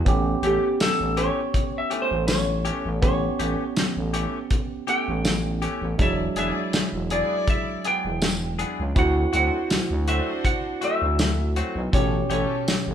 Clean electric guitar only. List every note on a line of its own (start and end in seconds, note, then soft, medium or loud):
0.43 0.68 E3 soft
0.43 0.68 A3 medium
0.43 0.67 C#4 medium
0.43 0.67 G4 medium
1.17 1.42 E3 medium
1.17 1.42 A3 medium
1.17 1.41 C#4 medium
1.17 1.41 G4 medium
1.90 2.16 E3 soft
1.90 2.15 A3 medium
1.90 2.15 C#4 medium
1.90 2.14 G4 medium
2.65 2.90 E3 soft
2.65 2.90 A3 medium
2.65 2.89 C#4 medium
2.65 2.89 G4 medium
3.39 3.64 E3 medium
3.39 3.64 A3 medium
3.39 3.64 C#4 medium
3.39 3.63 G4 medium
4.14 4.38 E3 medium
4.14 4.38 A3 medium
4.14 4.38 C#4 medium
4.14 4.37 G4 medium
4.87 5.12 E3 soft
4.87 5.12 A3 medium
4.87 5.12 C#4 medium
4.87 5.11 G4 medium
5.62 5.87 E3 medium
5.62 5.86 A3 soft
5.62 5.86 C#4 medium
5.62 5.86 G4 medium
6.37 6.61 E3 medium
6.37 6.61 B3 medium
6.37 6.60 D4 medium
6.37 6.60 G#4 medium
7.11 7.36 E3 medium
7.11 7.35 B3 medium
7.11 7.35 D4 medium
7.11 7.34 G#4 medium
7.85 8.10 E3 soft
7.85 8.10 B3 medium
7.85 8.09 D4 medium
7.85 8.09 G#4 medium
8.59 8.84 E3 soft
8.59 8.83 B3 medium
8.59 8.83 D4 medium
8.59 8.82 G#4 medium
9.33 9.58 F#3 soft
9.33 9.58 A3 medium
9.33 9.57 C4 medium
9.33 9.57 F#4 medium
10.08 10.33 F#3 medium
10.08 10.32 A3 medium
10.08 10.32 C4 medium
10.08 10.31 F#4 medium
10.81 11.07 F#3 medium
10.81 11.06 A3 medium
10.81 11.06 C4 medium
10.81 11.05 F#4 medium
11.56 11.81 F#3 medium
11.56 11.81 A3 medium
11.56 11.80 C4 medium
11.56 11.80 F#4 medium
12.30 12.55 E3 medium
12.30 12.55 A3 medium
12.30 12.54 C#4 medium
12.30 12.54 G4 medium